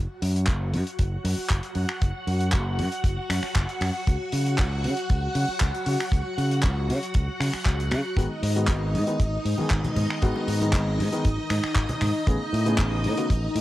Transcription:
Already playing: string machine F#4 F#5
0.22 fingered electric bass F#2, open hi-hat
0.36 closed hi-hat
0.47 fingered electric bass F#1, kick, clap, closed hi-hat
0.73 fingered electric bass F#2, open hi-hat
0.87 closed hi-hat
0.99 fingered electric bass F#1, kick, closed hi-hat
1.24 fingered electric bass F#2, open hi-hat
1.38 muted fingered electric bass stroke
1.50 fingered electric bass F#1, kick, clap, closed hi-hat
1.63 closed hi-hat
1.75 fingered electric bass F#2, open hi-hat
1.89 finger snap
2.02 fingered electric bass F#1, kick, closed hi-hat
2.27 fingered electric bass F#2, open hi-hat
2.41 closed hi-hat
2.52 fingered electric bass F#1, kick, clap, closed hi-hat
2.78 fingered electric bass F#2, open hi-hat
2.92 closed hi-hat
3.04 fingered electric bass F#1, kick, closed hi-hat
3.18 muted fingered electric bass stroke
3.30 fingered electric bass F#2, finger snap, open hi-hat
3.43 finger snap, muted fingered electric bass stroke
3.56 fingered electric bass F#1, kick, clap, closed hi-hat
3.69 closed hi-hat
3.81 fingered electric bass F#2, finger snap, open hi-hat
4.07 fingered electric bass C#2, kick, closed hi-hat
4.32 fingered electric bass C#3, open hi-hat
4.46 closed hi-hat
4.58 fingered electric bass C#2, kick, clap, closed hi-hat
4.84 fingered electric bass C#3, open hi-hat
4.97 closed hi-hat
5.10 fingered electric bass C#2, kick, closed hi-hat
5.35 fingered electric bass C#3, open hi-hat
5.48 muted fingered electric bass stroke
5.60 fingered electric bass C#2, kick, clap, closed hi-hat
5.75 closed hi-hat
5.86 fingered electric bass C#3, open hi-hat
6.00 finger snap
6.12 fingered electric bass C#2, kick, closed hi-hat
6.38 fingered electric bass C#3, open hi-hat
6.51 closed hi-hat
6.63 fingered electric bass C#2, kick, clap, closed hi-hat
6.89 fingered electric bass C#3, open hi-hat
7.03 closed hi-hat
7.14 fingered electric bass C#2, kick, closed hi-hat
7.28 muted fingered electric bass stroke
7.40 fingered electric bass C#3, finger snap, open hi-hat
7.53 finger snap, muted fingered electric bass stroke
7.65 fingered electric bass C#2, kick, clap, closed hi-hat
7.80 closed hi-hat
7.91 fingered electric bass C#3, finger snap, open hi-hat
8.17 fingered electric bass G#1, grand piano D#3 G#3 B3 F#4, string machine D#4 D#5, kick, closed hi-hat
8.43 fingered electric bass G#2, open hi-hat
8.55 grand piano D#3 G#3 B3 F#4, closed hi-hat
8.67 fingered electric bass G#1, kick, clap, closed hi-hat
8.94 fingered electric bass G#2, open hi-hat
9.07 grand piano D#3 G#3 B3 D#4, closed hi-hat
9.20 fingered electric bass G#1, kick, closed hi-hat
9.45 fingered electric bass G#2, open hi-hat
9.58 grand piano D#3 G#3 B3 G#4, muted fingered electric bass stroke, high conga
9.70 fingered electric bass G#1, kick, clap, closed hi-hat
9.84 closed hi-hat, high conga, low conga
9.96 fingered electric bass G#2, open hi-hat, low conga
10.10 finger snap
10.22 fingered electric bass G#1, grand piano D#3 G#3 B3 F#4, kick, closed hi-hat
10.36 high bongo
10.48 fingered electric bass G#2, open hi-hat
10.61 grand piano D#3 G#3 B3 D#4, closed hi-hat, high conga
10.73 fingered electric bass G#1, kick, clap, closed hi-hat
10.99 fingered electric bass G#2, open hi-hat
11.12 grand piano D#3 G#3 B3 D#4, closed hi-hat
11.25 fingered electric bass G#1, kick, closed hi-hat
11.38 muted fingered electric bass stroke
11.50 fingered electric bass G#2, finger snap, open hi-hat, high bongo
11.64 finger snap, muted fingered electric bass stroke
11.75 fingered electric bass G#1, kick, clap, closed hi-hat
11.89 closed hi-hat, low conga
12.01 fingered electric bass G#2, finger snap, open hi-hat, low conga
12.27 fingered electric bass A1, grand piano C#3 A3 B3 G#4, kick, closed hi-hat
12.53 fingered electric bass A2, open hi-hat
12.66 grand piano C#3 A3 B3 G#4, closed hi-hat
12.78 fingered electric bass A1, kick, clap, closed hi-hat
13.04 fingered electric bass A2, open hi-hat
13.17 grand piano C#3 A3 B3 F#4, closed hi-hat
13.30 fingered electric bass A1, kick, closed hi-hat
13.55 fingered electric bass A2, open hi-hat

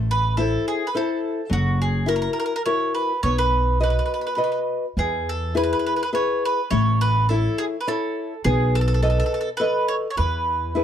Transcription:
Already playing: upright bass A1, nylon-string guitar A3
0.11 mandolin B4
0.37 nylon-string guitar E4 A4 C5, mandolin A4
0.68 mandolin G#4
0.87 mandolin B4
0.95 nylon-string guitar E4 A4 C5, mandolin A4
1.50 upright bass F#1, nylon-string guitar F#3, mandolin F#4
1.82 mandolin G#4
2.06 nylon-string guitar E4 F#4 A#4, mandolin A#4
2.16 mandolin A#4
2.22 mandolin A#4
2.33 mandolin A#4
2.40 mandolin A#4
2.46 mandolin A#4
2.56 mandolin A#4
2.66 nylon-string guitar E4 F#4 A#4, mandolin C#5
2.95 mandolin B4
3.23 upright bass B1, nylon-string guitar B3, mandolin C#5
3.38 mandolin B4
3.80 nylon-string guitar F#4 B4 D#5, mandolin B4
3.90 mandolin B4
3.99 mandolin B4
4.06 mandolin B4
4.14 mandolin B4
4.21 mandolin B4
4.27 mandolin B4
4.35 nylon-string guitar F#4 B4 D#5, mandolin B4
4.44 mandolin B4
4.52 mandolin B4
4.97 upright bass E2, nylon-string guitar E3, mandolin G#4
5.29 mandolin A4
5.55 nylon-string guitar E4 G#4 B4, mandolin B4
5.63 mandolin B4
5.73 mandolin B4
5.79 mandolin B4
5.86 mandolin B4
5.96 mandolin B4
6.03 mandolin B4
6.13 nylon-string guitar E4 G#4 B4, mandolin C#5
6.45 mandolin B4
6.70 upright bass A1, nylon-string guitar A3, mandolin C#5
7.01 mandolin B4
7.29 nylon-string guitar E4 A4 C#5, mandolin A4
7.58 mandolin G#4
7.81 mandolin B4
7.87 nylon-string guitar E4 A4 C#5, mandolin A4
8.44 upright bass B1, nylon-string guitar B3, mandolin G#4
8.75 mandolin A4
8.81 mandolin A4
8.88 mandolin A4
8.94 mandolin A4
9.03 mandolin A4, nylon-string guitar A4 B4 D#5
9.10 mandolin A4
9.20 mandolin A4
9.26 mandolin A4
9.34 mandolin A4
9.41 mandolin A4
9.57 nylon-string guitar A4 B4 D#5, mandolin B4
9.88 mandolin C#5
10.11 mandolin C#5
10.17 upright bass E2, nylon-string guitar E3, mandolin B4
10.75 nylon-string guitar E4 G#4 B4

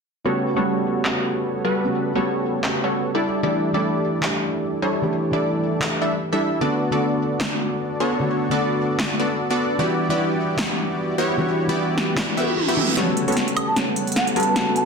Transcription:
0.24 felt piano C#3 A3 B3 F#4, supersaw synth G3 B3 F#4 A4 C#5
0.54 felt piano C#3 G3 A3 B3, supersaw synth G3 B3 F#4 A4 C#5
1.03 felt piano C#3 A3 B3, clap
1.07 felt piano F#4
1.65 supersaw synth G3 B3 F#4 A4 B4
1.83 felt piano C#3 A3 B3 F#4
2.13 felt piano C#3 A3 B3, supersaw synth G3 B3 F#4 A4 C#5
2.17 felt piano G3
2.62 felt piano C#3 A3 B3 F#4, clap
2.84 supersaw synth G3 B3 F#4 A4 C#5
3.15 supersaw synth G3 D4 E4 A4 D5
3.42 felt piano E3 A3 D4 G4, supersaw synth G3 D4 E4 A4 D5
3.72 felt piano E3 A3 D4 A4, supersaw synth G3 D4 E4 A4 D5
4.21 felt piano E3 A3 D4, clap
4.25 felt piano G4
4.82 supersaw synth G3 D4 E4 A4 C#5
5.01 felt piano E3 A3 D4 G4
5.31 felt piano E3 A3 D4, supersaw synth G3 D4 E4 A4 D5
5.35 felt piano A4
5.80 felt piano E3 A3 D4, clap
6.02 supersaw synth G3 D4 E4 A4 E5
6.33 supersaw synth G3 D4 E4 A4 E5
6.60 felt piano D3 A3 B3 F#4, supersaw synth B3 D4 F#4 A4 D5
6.90 felt piano D3 A3 B3 A4, supersaw synth B3 D4 F#4 A4 D5
7.39 felt piano D3 A3 B3 F#4, snare, clap
8.00 supersaw synth B3 D4 F#4 A4 C#5
8.19 felt piano D3 A3 B3 F#4
8.49 felt piano D3 A3 B3 A4, supersaw synth B3 D4 F#4 A4 D5
8.98 felt piano D3 A3 F#4, snare, clap
9.20 supersaw synth B3 D4 F#4 A4 D5
9.50 supersaw synth B3 D4 F#4 A4 D5
9.78 felt piano E3 G3 D4 F#4, supersaw synth B3 E4 F#4 G4 D5
10.08 felt piano E3 G3 D4, supersaw synth B3 E4 F#4 G4 D5
10.57 felt piano E3 G3 D4, snare, clap
10.61 felt piano F#5
11.18 supersaw synth B3 E4 F#4 G4 C#5
11.37 felt piano E3 G3 D4 F#4
11.67 felt piano E3 G3 D4, supersaw synth B3 E4 F#4 G4 D5
11.98 snare
12.16 felt piano E3 G3 D4, snare, clap, reverse cymbal
12.20 felt piano F#4
12.37 supersaw synth B3 E4 F#4 G4 E5, high tom
12.57 mid tom
12.68 supersaw synth B3 E4 F#4 G4 E5, mid tom
12.76 felt piano E3 G3 D4 A4, mid tom
12.88 mid tom
12.96 felt piano C#3 A3 B3 F#4, analog synth pad G3 B3 C#4 A4 F#5, supersaw synth G3 B3 F#4 A4 C#5, snare, closed hi-hat, riser
13.17 closed hi-hat
13.26 felt piano C#3 A3 B3, supersaw synth G3 B3 F#4 A4 C#5, closed hi-hat
13.30 felt piano G3, closed hi-hat
13.37 snare, closed hi-hat
13.48 closed hi-hat
13.57 closed hi-hat, high woodblock
13.68 flute A5
13.74 felt piano C#3 A3 B3 F#4, snare, closed hi-hat
13.96 closed hi-hat
14.07 closed hi-hat
14.12 closed hi-hat
14.16 flute F#5, snare, closed hi-hat
14.27 closed hi-hat
14.36 supersaw synth G3 B3 F#4 A4 B4, flute A5, closed hi-hat
14.40 closed hi-hat
14.43 closed hi-hat
14.55 felt piano C#3 A3 B3 F#4, snare, closed hi-hat
14.76 flute A5, closed hi-hat

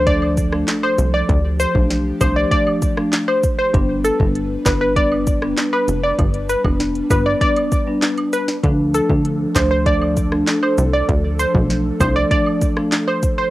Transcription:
Already playing: analog synth bass D2, analog synth pad F3 D4 A4, impact
0.06 marimba F3 A3 D4, synth pluck D5, kick, closed hi-hat
0.22 high woodblock
0.37 kick, closed hi-hat, cabasa
0.52 marimba F3 A3 D4, cross-stick
0.68 snare, clap, closed hi-hat
0.83 synth pluck C5, high woodblock
0.98 analog synth bass C2, closed hi-hat, cabasa
1.14 synth pluck D5
1.29 analog synth bass D2, analog synth pad G4, kick, closed hi-hat
1.60 synth pluck C5, closed hi-hat, cabasa
1.75 analog synth bass B1, marimba F3 A3 D4, kick
1.90 snare, closed hi-hat
2.21 analog synth bass C2, marimba F3 A3 D4, synth pluck C5, kick, closed hi-hat, cabasa, high woodblock
2.36 synth pluck D5
2.51 marimba F3 A3 D4, synth pluck D5, kick, closed hi-hat
2.67 high woodblock
2.82 kick, closed hi-hat, cabasa
2.97 marimba F3 A3 D4, cross-stick
3.13 snare, clap, closed hi-hat
3.28 synth pluck C5, high woodblock
3.43 kick, closed hi-hat, cabasa
3.59 synth pluck C5
3.74 analog synth bass G1, marimba G3 B3 D4, analog synth pad G3 B4, kick, closed hi-hat
4.04 synth pluck A4, closed hi-hat, cabasa
4.19 analog synth bass G1, marimba G3 B3 D4, kick
4.35 closed hi-hat
4.65 analog synth bass G1, marimba G3 B3 D4, synth pluck B4, kick, snare, clap, closed hi-hat, cabasa, high woodblock
4.81 synth pluck B4
4.96 marimba G3 B3 D4, synth pluck D5, kick, closed hi-hat
5.12 high woodblock
5.27 kick, closed hi-hat, cabasa
5.42 marimba G3 B3 D4, cross-stick
5.57 snare, clap, closed hi-hat
5.73 synth pluck B4, high woodblock
5.88 analog synth bass F1, closed hi-hat, cabasa
6.04 synth pluck D5
6.19 analog synth bass G1, kick, closed hi-hat, high woodblock
6.34 closed hi-hat
6.49 synth pluck B4, closed hi-hat, cabasa
6.64 analog synth bass F1, marimba G3 B3 D4, kick, high woodblock
6.80 snare, closed hi-hat
6.95 closed hi-hat
7.10 analog synth bass G1, marimba G3 B3 D4, synth pluck B4, kick, closed hi-hat, cabasa, high woodblock
7.26 synth pluck D5
7.41 marimba G3 B3 D4, synth pluck D5, kick, closed hi-hat
7.56 closed hi-hat, high woodblock
7.72 kick, closed hi-hat, cabasa
7.87 marimba G3 B3 D4
8.02 snare, clap, closed hi-hat
8.18 closed hi-hat, high woodblock
8.33 synth pluck B4, closed hi-hat, cabasa
8.48 snare
8.63 analog synth bass D2, marimba F3 A3 D4, analog synth pad F3 A4, kick, closed hi-hat
8.94 synth pluck A4, closed hi-hat, cabasa
9.09 analog synth bass D2, marimba F3 A3 D4, kick
9.25 closed hi-hat
9.55 analog synth bass D2, marimba F3 A3 D4, synth pluck C5, kick, snare, clap, closed hi-hat, cabasa, high woodblock
9.71 synth pluck C5
9.86 marimba F3 A3 D4, synth pluck D5, kick, closed hi-hat
10.02 high woodblock
10.17 kick, closed hi-hat, cabasa
10.32 marimba F3 A3 D4, cross-stick
10.47 snare, clap, closed hi-hat
10.63 synth pluck C5, high woodblock
10.78 analog synth bass C2, closed hi-hat, cabasa
10.93 synth pluck D5
11.09 analog synth bass D2, kick, closed hi-hat
11.39 synth pluck C5, closed hi-hat, cabasa
11.54 analog synth bass B1, marimba F3 A3 D4, kick
11.70 snare, closed hi-hat
12.00 analog synth bass C2, marimba F3 A3 D4, synth pluck C5, kick, closed hi-hat, cabasa, high woodblock
12.16 synth pluck D5
12.31 marimba F3 A3 D4, synth pluck D5, kick, closed hi-hat
12.46 high woodblock
12.62 kick, closed hi-hat, cabasa
12.77 marimba F3 A3 D4, cross-stick
12.92 snare, clap, closed hi-hat
13.08 synth pluck C5, high woodblock
13.23 kick, closed hi-hat, cabasa
13.38 synth pluck C5

